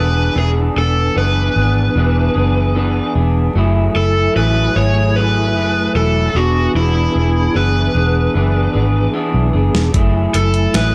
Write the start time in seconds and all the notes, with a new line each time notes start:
Already playing: E1 E3 B3 D4 G#4 B4
0.00 B3 G#5
0.35 E1 E3 B3 D4 G#4
0.76 E1 B3 D4 A4
1.15 F#1 E3 B3 D4 G#4 B4
1.55 G#1 B3 D4 G#4
1.95 E1 E3 B3 D4 G#4
2.35 F#1 D4 G#4
2.39 B3
2.75 E3 B3 D4 G#4
3.15 E1 B3 D4 G#4
3.54 F#1 F#3 A3 E4
3.58 G#4 G#5
3.95 F#1 A3 E4 A4
4.35 A1 F#3 A3 E4 G#4 B4
4.75 G#1 A3 E4 G#4 C#5
5.15 F#3 A3 E4 G#4 B4
5.55 F#1 A3 E4 G#4
5.95 E1 F#3 A3 E4 A4
6.33 E1 E3 B3 D4 F#4 G#4
6.37 B3 D4 G#4
6.74 E1 E3 B3 D4 E4 G#4
7.14 E1 B3 D4 G#4
7.54 F#1 E3 B3 D4 G#4 B4
7.94 E1 B3 D4 G#4
8.34 F#1 E3 B3 D4 G#4
8.74 G#1 B3 D4 G#4
9.14 E3 B3 D4 G#4
9.34 B1
9.53 F#1 B3 D4 G#4
9.74 E1, snare
9.92 F#1 F#3 A3 E4, kick, closed hi-hat
9.96 G#4 G#5
10.34 F#1 A3 E4 A4, closed hi-hat
10.54 closed hi-hat
10.73 A1 F#3 A3 E4 G#4 B4, snare, closed hi-hat